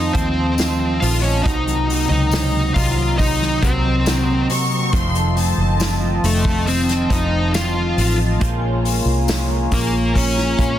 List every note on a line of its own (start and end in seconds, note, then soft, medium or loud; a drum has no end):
0.00 0.11 F2 medium
0.00 0.17 D#3 medium
0.00 0.14 F3 medium
0.00 0.15 A3 medium
0.00 0.15 C4 medium
0.00 1.40 C4 medium
0.00 0.13 D#4 medium
0.00 0.14 F4 medium
0.00 1.41 F4 medium
0.00 1.41 C5 medium
0.00 0.11 D#5 medium
0.00 4.89 D#5 medium
0.00 1.41 A5 medium
0.13 0.98 D#2 medium
0.13 0.57 D#3 soft
0.13 0.34 F3 medium
0.13 0.58 A3 soft
0.13 0.58 C4 medium
0.13 0.99 C4 medium
0.13 0.59 F4 medium
0.13 1.04 C5 medium
0.13 kick medium
0.13 hi-hat pedal medium
0.13 open hi-hat medium
0.35 0.56 F3 medium
0.58 1.02 D#3 medium
0.58 0.79 F3 medium
0.58 1.02 A3 medium
0.58 1.01 C4 medium
0.58 1.00 F4 medium
0.58 snare loud
0.58 hi-hat pedal medium
0.58 open hi-hat medium
0.58 tambourine medium
0.80 1.00 F3 medium
1.00 1.42 A#1 medium
1.00 1.44 D#3 soft
1.00 1.22 F3 medium
1.00 1.46 A3 soft
1.00 1.45 C4 soft
1.00 1.45 F4 medium
1.00 1.23 F4 medium
1.00 1.21 F5 medium
1.00 hi-hat pedal medium
1.00 open hi-hat medium
1.22 1.44 F3 medium
1.22 1.45 C#4 medium
1.22 1.43 C#5 medium
1.22 open hi-hat medium
1.43 2.07 C2 loud
1.43 1.89 C3 medium
1.43 1.87 C3 medium
1.43 1.89 D#3 medium
1.43 4.90 F#3 medium
1.43 1.89 A#3 medium
1.43 8.37 C4 medium
1.43 1.89 C4 medium
1.43 2.07 D#4 medium
1.43 1.87 F#4 medium
1.43 2.08 D#5 loud
1.43 4.90 A#5 medium
1.43 kick loud
1.43 hi-hat pedal medium
1.43 open hi-hat medium
1.67 2.10 F#3 medium
1.67 hi-hat pedal medium
1.89 2.32 C3 medium
1.89 2.32 A#3 soft
1.89 2.33 C4 soft
1.89 2.32 F#4 medium
1.89 hi-hat pedal medium
1.89 open hi-hat medium
2.09 2.72 C#2 medium
2.09 2.52 F#3 medium
2.09 2.73 D#4 medium
2.09 2.74 D#5 medium
2.31 2.75 C3 medium
2.31 4.05 D#3 medium
2.31 3.63 A#3 medium
2.31 3.63 C4 medium
2.31 snare loud
2.31 hi-hat pedal medium
2.31 open hi-hat medium
2.31 tambourine medium
2.54 2.97 F#3 medium
2.74 3.59 C2 medium
2.74 3.19 C3 medium
2.74 3.17 F4 medium
2.74 3.15 F5 medium
2.74 kick medium
2.74 hi-hat pedal medium
2.74 open hi-hat medium
2.98 3.41 F#3 medium
3.18 3.62 C3 medium
3.18 3.60 D#4 medium
3.18 3.64 D#5 medium
3.18 kick medium
3.18 hi-hat pedal medium
3.18 open hi-hat medium
3.42 3.84 F#3 medium
3.42 snare soft
3.62 4.46 C2 medium
3.62 4.06 C3 medium
3.62 4.06 A#3 soft
3.62 4.46 C4 medium
3.62 4.06 C4 medium
3.62 4.06 F#4 medium
3.62 4.46 C5 medium
3.62 kick loud
3.62 hi-hat pedal medium
3.62 open hi-hat medium
3.85 4.28 F#3 medium
4.06 4.50 C3 medium
4.06 4.50 D#3 medium
4.06 4.50 A#3 medium
4.06 4.49 C4 medium
4.06 4.49 F#4 medium
4.06 snare loud
4.06 hi-hat pedal medium
4.06 open hi-hat medium
4.06 tambourine medium
4.29 4.72 F#3 medium
4.50 4.93 C3 medium
4.50 4.93 A#3 soft
4.50 4.93 C4 medium
4.50 4.93 F#4 medium
4.50 4.91 C#6 loud
4.50 hi-hat pedal medium
4.50 open hi-hat medium
4.71 4.93 F#3 medium
4.71 open hi-hat medium
4.92 5.54 F1 loud
4.92 5.37 F2 medium
4.92 5.37 C3 medium
4.92 5.37 D#3 loud
4.92 5.15 F3 medium
4.92 5.36 A3 medium
4.92 5.35 C4 medium
4.92 10.79 F4 medium
4.92 5.35 F4 medium
4.92 8.38 D#5 medium
4.92 8.38 A5 medium
4.92 5.37 C6 loud
4.92 kick loud
4.92 hi-hat pedal medium
4.92 open hi-hat medium
5.15 5.37 F3 medium
5.15 hi-hat pedal medium
5.36 5.78 D#3 medium
5.36 5.59 F3 medium
5.36 5.79 A3 medium
5.36 5.80 C4 medium
5.36 5.80 F4 medium
5.36 5.99 A5 medium
5.36 hi-hat pedal medium
5.36 open hi-hat medium
5.58 6.19 F#1 medium
5.58 5.81 F3 medium
5.79 7.10 D#3 medium
5.79 6.01 F3 medium
5.79 7.11 A3 medium
5.79 7.10 C4 medium
5.79 7.10 F4 medium
5.79 snare loud
5.79 hi-hat pedal medium
5.79 open hi-hat medium
5.79 tambourine medium
6.03 6.24 F3 medium
6.23 7.07 F1 medium
6.23 6.46 F3 soft
6.23 6.65 A3 medium
6.23 6.68 A4 medium
6.23 hi-hat pedal medium
6.23 open hi-hat medium
6.45 6.89 F3 medium
6.45 kick medium
6.45 open hi-hat medium
6.67 7.08 C4 medium
6.67 8.38 C4 medium
6.67 7.13 C5 medium
6.67 hi-hat pedal medium
6.67 open hi-hat medium
6.89 7.10 F3 medium
6.89 snare soft
6.89 hi-hat pedal medium
7.10 7.93 F1 medium
7.10 7.53 D#3 soft
7.10 7.32 F3 medium
7.10 7.54 A3 medium
7.10 7.54 C4 medium
7.10 7.52 D#4 medium
7.10 7.54 F4 medium
7.10 7.51 D#5 medium
7.10 kick loud
7.10 hi-hat pedal medium
7.10 open hi-hat medium
7.33 7.53 F3 medium
7.54 7.98 D#3 medium
7.54 7.75 F3 medium
7.54 7.98 A3 medium
7.54 7.97 C4 medium
7.54 8.16 F4 medium
7.54 7.96 F4 medium
7.54 8.16 F5 medium
7.54 snare loud
7.54 hi-hat pedal medium
7.54 open hi-hat medium
7.54 tambourine medium
7.76 7.95 F3 medium
7.97 8.38 A1 medium
7.97 8.40 D#3 soft
7.97 8.17 F3 medium
7.97 8.41 A3 soft
7.97 8.41 C4 soft
7.97 8.41 F4 medium
7.97 hi-hat pedal medium
7.97 open hi-hat medium
8.18 8.40 F3 medium
8.40 9.03 A#1 loud
8.40 8.84 A#2 medium
8.40 8.85 F3 medium
8.40 8.85 G#3 medium
8.40 8.81 A#3 medium
8.40 8.84 C#4 medium
8.40 8.83 F4 loud
8.40 10.79 A#4 medium
8.40 10.79 C#5 medium
8.40 10.79 G#5 medium
8.40 kick loud
8.40 hi-hat pedal medium
8.40 open hi-hat loud
8.62 9.04 F4 medium
8.83 9.26 A#3 medium
8.83 9.28 C#4 medium
8.83 9.28 F4 medium
8.83 hi-hat pedal medium
8.83 open hi-hat medium
8.87 9.28 G#3 soft
9.05 9.67 C2 medium
9.05 9.47 F4 medium
9.27 10.79 F3 medium
9.27 10.60 G#3 medium
9.27 9.70 A#3 medium
9.27 10.59 C#4 medium
9.27 10.58 F4 medium
9.27 snare loud
9.27 hi-hat pedal medium
9.27 open hi-hat medium
9.27 tambourine medium
9.49 9.92 F4 medium
9.71 10.55 A#1 loud
9.71 10.13 A#3 medium
9.71 10.17 A#4 medium
9.71 kick loud
9.71 hi-hat pedal medium
9.71 open hi-hat medium
9.93 10.35 F4 medium
10.14 10.57 A#3 medium
10.14 10.79 C#4 medium
10.14 10.79 C#5 medium
10.14 kick medium
10.14 hi-hat pedal medium
10.14 open hi-hat medium
10.37 10.79 F4 medium
10.37 snare soft
10.58 10.79 A#1 medium
10.58 10.79 G#3 soft
10.58 10.79 A#3 medium
10.58 10.79 C#4 soft
10.58 10.79 F4 medium
10.58 kick loud
10.58 hi-hat pedal medium
10.58 open hi-hat medium